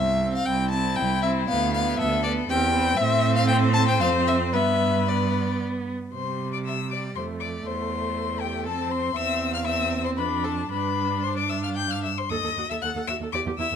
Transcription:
0.00 0.41 C2 medium
0.00 0.32 E5 loud
0.22 0.72 C4 medium
0.35 0.47 F5 loud
0.46 0.92 C2 medium
0.46 2.01 E4 loud
0.46 0.70 G5 loud
0.71 1.23 C4 medium
0.71 0.97 A5 loud
0.96 1.43 C2 medium
0.96 1.22 G5 loud
1.23 1.48 C4 medium
1.23 1.31 E5 medium
1.49 1.93 D2 medium
1.49 1.73 B3 medium
1.49 1.73 F5 loud
1.74 2.23 B3 medium
1.74 1.98 F5 loud
1.99 2.43 D2 medium
1.99 2.51 A4 loud
1.99 2.23 E5 loud
2.24 2.49 B3 medium
2.24 2.32 D5 loud
2.48 2.92 E2 medium
2.48 2.73 C4 medium
2.48 2.75 G4 medium
2.48 2.98 G5 loud
2.73 2.97 C4 medium
2.73 2.99 B4 loud
2.97 4.01 A2 loud
2.97 3.96 C4 loud
2.97 3.47 C5 loud
2.97 3.35 E5 loud
3.36 3.47 F5 loud
3.47 4.55 C5 loud
3.47 3.56 G5 loud
3.74 3.86 A5 loud
3.88 4.00 G5 loud
3.99 4.55 F2 medium
3.99 4.54 C4 medium
3.99 4.09 F5 loud
4.28 4.36 E5 loud
4.53 5.94 G2 medium
4.53 5.07 B3 medium
4.53 5.88 B4 medium
4.53 5.10 E5 loud
5.07 5.92 B3 medium
5.07 5.62 D5 medium
6.13 7.12 C3 medium
6.13 7.18 G3 soft
6.13 6.49 C5 medium
6.13 6.49 C6 medium
6.53 6.58 D5 medium
6.53 6.58 D6 medium
6.65 6.75 E5 medium
6.65 6.90 E6 medium
6.91 7.16 D5 medium
6.91 6.99 D6 medium
7.15 7.66 F2 medium
7.15 8.68 A3 medium
7.15 7.25 C5 medium
7.15 7.23 C6 medium
7.40 7.69 D5 medium
7.40 7.48 D6 medium
7.65 8.67 E2 medium
7.65 8.44 C5 medium
7.65 8.42 C6 medium
8.40 8.66 G4 medium
8.40 8.65 G5 medium
8.64 9.15 F2 medium
8.64 9.14 C4 medium
8.64 8.90 A4 medium
8.64 8.93 A5 medium
8.89 9.14 C5 medium
8.89 9.17 C6 medium
9.15 10.19 E2 medium
9.15 9.62 C4 medium
9.15 9.52 E5 medium
9.15 9.53 E6 loud
9.54 9.67 F5 medium
9.54 9.59 F6 medium
9.65 10.20 C4 medium
9.65 10.03 E5 medium
9.65 10.04 E6 medium
10.04 10.09 C5 medium
10.04 10.11 C6 medium
10.17 10.70 F2 medium
10.17 10.71 D4 medium
10.17 10.25 B4 medium
10.17 10.46 B5 medium
10.44 10.52 A4 medium
10.44 10.71 A5 medium
10.70 12.07 G2 medium
10.70 12.08 D4 medium
10.70 11.23 B4 medium
10.70 11.25 B5 loud
11.23 11.38 C5 medium
11.23 11.37 C6 medium
11.36 11.49 D5 medium
11.36 11.51 D6 medium
11.50 11.55 E5 medium
11.50 11.63 E6 medium
11.64 11.77 F5 medium
11.64 11.69 F6 medium
11.75 11.90 G5 medium
11.75 11.92 G6 medium
11.90 12.03 F5 medium
11.90 12.03 F6 medium
12.03 12.09 E5 medium
12.03 12.19 E6 medium
12.18 12.23 C5 medium
12.18 12.31 C6 medium
12.30 12.36 D#2 medium
12.30 12.36 A4 medium
12.30 12.71 D#5 medium
12.30 12.69 D#6 medium
12.43 12.49 D#2 medium
12.43 12.49 A4 medium
12.57 12.62 D#2 soft
12.57 12.63 F#4 medium
12.70 12.75 D#2 medium
12.70 12.75 A4 medium
12.70 12.84 E5 medium
12.70 12.76 E6 medium
12.82 12.88 D#2 medium
12.82 12.89 A4 medium
12.82 13.08 F#5 medium
12.82 12.90 F#6 medium
12.95 13.00 D#2 soft
12.95 13.01 A4 medium
13.07 13.13 D#2 medium
13.07 13.14 F#4 medium
13.07 13.17 E5 medium
13.07 13.15 E6 medium
13.20 13.25 D#2 medium
13.20 13.27 A4 medium
13.33 13.39 E2 medium
13.33 13.39 G4 medium
13.33 13.42 D5 medium
13.33 13.41 D6 medium
13.46 13.51 E2 medium
13.46 13.52 G4 medium
13.58 13.64 E2 medium
13.58 13.65 E4 medium
13.58 13.76 E5 medium
13.58 13.76 E6 medium
13.71 13.76 E2 medium
13.71 13.76 G4 medium

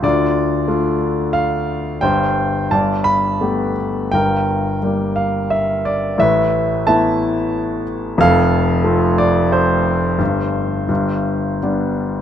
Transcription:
0.03 1.98 D2 medium
0.03 1.98 D3 medium
0.03 0.67 F4 medium
0.03 1.39 D5 medium
0.68 1.98 A3 medium
0.68 1.98 D4 soft
0.68 1.99 F4 medium
1.33 2.04 F5 medium
2.01 2.68 G1 medium
2.01 2.69 G2 medium
2.01 2.68 C5 medium
2.01 2.67 G5 medium
2.71 4.08 G1 medium
2.71 4.08 G2 medium
2.71 3.74 D5 medium
2.71 3.04 A5 medium
3.04 3.72 B5 loud
3.41 4.10 A3 soft
3.41 4.10 B3 soft
3.41 4.11 G4 soft
4.12 6.15 G1 medium
4.12 6.15 G2 medium
4.12 5.14 A#4 medium
4.12 4.78 G5 medium
4.82 6.15 G3 soft
4.82 6.15 A#3 soft
4.82 6.15 G4 soft
5.16 5.51 F5 medium
5.50 5.82 E5 medium
5.85 6.17 D5 medium
6.18 8.15 A1 medium
6.18 8.15 A2 medium
6.18 7.18 B4 medium
6.18 6.86 E5 medium
6.87 8.15 A3 soft
6.87 8.15 B3 soft
6.87 8.16 E4 medium
6.87 7.82 E5 medium
6.87 7.82 A5 medium
8.18 10.16 F1 medium
8.18 10.16 F2 medium
8.18 9.15 A4 medium
8.18 9.15 F5 loud
8.84 10.16 A3 medium
8.84 10.15 C4 soft
8.84 10.16 F4 medium
9.18 9.50 D5 medium
9.52 11.59 A4 medium
9.52 11.59 C5 medium
10.18 10.85 G1 medium
10.18 10.87 G2 medium
10.89 12.22 G1 medium
10.89 12.22 G2 medium
11.62 12.22 G3 soft
11.62 12.22 B3 soft
11.62 12.22 D4 soft

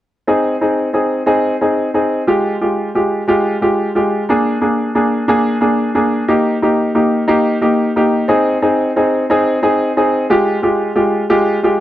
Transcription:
0.27 0.54 C4 medium
0.27 0.54 D#4 soft
0.27 0.54 G#4 medium
0.61 0.87 C4 soft
0.61 0.87 D#4 soft
0.61 0.88 G#4 soft
0.93 1.20 C4 soft
0.93 1.20 D#4 soft
0.93 1.20 G#4 soft
1.26 1.53 C4 medium
1.26 1.53 D#4 medium
1.26 1.53 G#4 medium
1.61 1.87 C4 soft
1.61 1.88 D#4 soft
1.61 1.88 G#4 medium
1.94 2.21 C4 soft
1.94 2.21 D#4 soft
1.94 2.21 G#4 medium
2.27 2.54 G#3 medium
2.27 2.54 F4 soft
2.27 2.54 G4 medium
2.61 2.88 G#3 soft
2.61 2.88 F4 soft
2.61 2.88 G4 soft
2.95 3.21 G#3 soft
2.95 3.21 F4 soft
2.95 3.21 G4 soft
3.28 3.54 G#3 medium
3.28 3.55 F4 medium
3.28 3.55 G4 medium
3.61 3.88 G#3 soft
3.61 3.88 F4 soft
3.61 3.88 G4 medium
3.95 4.22 G#3 medium
3.95 4.22 F4 soft
3.95 4.22 G4 medium
4.29 4.55 A#3 medium
4.29 4.55 D4 medium
4.29 4.56 G#4 medium
4.61 4.88 A#3 soft
4.61 4.88 D4 soft
4.61 4.88 G#4 medium
4.95 5.22 A#3 soft
4.95 5.22 D4 soft
4.95 5.22 G#4 medium
5.28 5.55 A#3 medium
5.28 5.55 D4 medium
5.28 5.55 G#4 medium
5.61 5.88 A#3 medium
5.61 5.88 D4 soft
5.61 5.88 G#4 medium
5.95 6.22 A#3 medium
5.95 6.22 D4 soft
5.95 6.22 G#4 medium
6.28 6.55 A#3 medium
6.28 6.55 D#4 medium
6.28 6.55 G4 medium
6.62 6.89 A#3 soft
6.62 6.89 D#4 soft
6.62 6.89 G4 medium
6.95 7.22 A#3 medium
6.95 7.22 D#4 soft
6.95 7.22 G4 medium
7.28 7.55 A#3 medium
7.28 7.55 D#4 medium
7.28 7.56 G4 medium
7.62 7.89 A#3 medium
7.62 7.89 D#4 medium
7.62 7.89 G4 medium
7.96 8.23 A#3 medium
7.96 8.23 D#4 soft
7.96 8.23 G4 medium
8.28 8.55 C4 medium
8.28 8.56 D#4 medium
8.28 8.56 G#4 medium
8.62 8.89 C4 medium
8.62 8.89 D#4 medium
8.62 8.89 G#4 medium
8.96 9.23 C4 medium
8.96 9.23 D#4 soft
8.96 9.23 G#4 medium
9.30 9.57 C4 medium
9.30 9.56 D#4 medium
9.30 9.57 G#4 medium
9.63 9.89 C4 medium
9.63 9.89 D#4 medium
9.63 9.90 G#4 medium
9.97 10.23 C4 medium
9.97 10.23 D#4 medium
9.97 10.23 G#4 medium
10.30 10.56 G#3 medium
10.30 10.57 F4 medium
10.30 10.57 G4 medium
10.62 10.89 G#3 medium
10.62 10.90 F4 soft
10.62 10.90 G4 medium
10.95 11.23 G#3 medium
10.95 11.23 F4 soft
10.95 11.23 G4 medium
11.30 11.56 G#3 medium
11.30 11.57 F4 medium
11.30 11.57 G4 medium
11.63 11.80 G#3 medium
11.63 11.80 F4 medium
11.63 11.80 G4 medium

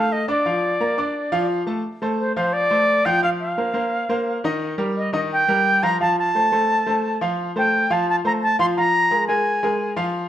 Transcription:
0.00 0.22 A3 medium
0.00 0.23 A4 medium
0.00 0.14 F5 medium
0.00 0.23 A5 medium
0.12 0.29 D#5 medium
0.28 0.43 D4 medium
0.28 0.43 D5 medium
0.28 1.46 D5 medium
0.28 0.43 D6 medium
0.46 0.74 F3 medium
0.46 0.74 F4 medium
0.46 0.74 F5 medium
0.80 0.95 A#3 medium
0.80 0.95 A#4 medium
0.80 0.95 A#5 medium
0.98 1.26 D4 medium
0.98 1.26 D5 medium
0.98 1.26 D6 medium
1.32 1.61 F3 medium
1.32 1.61 F4 medium
1.32 1.61 F5 medium
1.67 1.81 A3 medium
1.67 1.81 A4 medium
1.67 1.81 A5 medium
2.02 2.30 A3 medium
2.02 2.31 A4 medium
2.02 2.31 C5 medium
2.19 2.35 C5 medium
2.36 2.65 F3 medium
2.36 2.65 F4 medium
2.36 2.55 C5 medium
2.36 2.65 F5 medium
2.53 3.07 D5 loud
2.71 2.99 A3 medium
2.71 2.99 A4 medium
2.71 2.99 C5 medium
3.05 3.20 F3 medium
3.05 3.20 F4 medium
3.05 3.20 F5 medium
3.05 3.23 G5 loud
3.22 3.51 F3 medium
3.22 3.51 F4 medium
3.22 3.51 F5 medium
3.22 3.29 F5 loud
3.40 4.40 F5 medium
3.58 3.72 A#3 medium
3.58 3.72 A#4 medium
3.58 3.72 C5 medium
3.74 4.03 A#3 medium
3.74 4.03 A#4 medium
3.74 4.03 C5 medium
4.09 4.38 A#3 medium
4.09 4.38 A#4 medium
4.09 4.38 C5 medium
4.44 4.73 D#3 medium
4.44 4.73 D#4 medium
4.44 4.73 D#5 medium
4.78 5.07 G3 medium
4.78 5.07 G4 medium
4.78 5.07 A#4 medium
4.97 5.13 D#5 medium
5.13 5.41 D#3 medium
5.13 5.42 D#4 medium
5.13 5.42 D#5 medium
5.13 5.20 D#5 medium
5.33 5.85 G5 loud
5.48 5.77 G3 medium
5.48 5.77 G4 medium
5.48 5.77 A#4 medium
5.83 5.97 F3 medium
5.83 5.97 F4 medium
5.83 5.97 F5 medium
5.83 6.00 A#5 loud
6.00 6.29 F3 medium
6.00 6.29 F4 medium
6.00 6.29 F5 medium
6.00 6.17 A5 loud
6.19 7.18 A5 loud
6.35 6.49 A3 medium
6.35 6.49 A4 medium
6.35 6.49 C5 medium
6.52 6.80 A3 medium
6.52 6.80 A4 medium
6.52 6.81 C5 medium
6.86 7.15 A3 medium
6.86 7.15 A4 medium
6.86 7.15 C5 medium
7.21 7.49 F3 medium
7.21 7.50 F4 medium
7.21 7.50 F5 medium
7.56 7.84 A3 medium
7.56 7.84 A4 medium
7.56 7.84 C5 medium
7.56 7.94 G5 medium
7.90 8.18 F3 medium
7.90 8.19 F4 medium
7.90 8.19 F5 medium
7.90 8.08 A5 medium
8.10 8.16 A5 loud
8.25 8.53 A3 medium
8.25 8.53 A4 medium
8.25 8.53 C5 medium
8.25 8.32 A#5 medium
8.43 8.58 A5 loud
8.59 8.73 F3 medium
8.59 8.73 F4 medium
8.59 8.73 F5 medium
8.59 8.66 C6 loud
8.77 9.05 F3 medium
8.77 9.05 F4 medium
8.77 9.06 F5 medium
8.77 9.25 A#5 loud
9.11 9.25 G#3 medium
9.11 9.25 G#4 medium
9.11 9.25 A#4 medium
9.28 9.57 G#3 medium
9.28 9.57 G#4 medium
9.28 9.57 A#4 medium
9.28 9.93 G#5 medium
9.63 9.91 G#3 medium
9.63 9.91 G#4 medium
9.63 9.91 A#4 medium
9.96 10.25 F3 medium
9.96 10.25 F4 medium
9.96 10.25 F5 medium

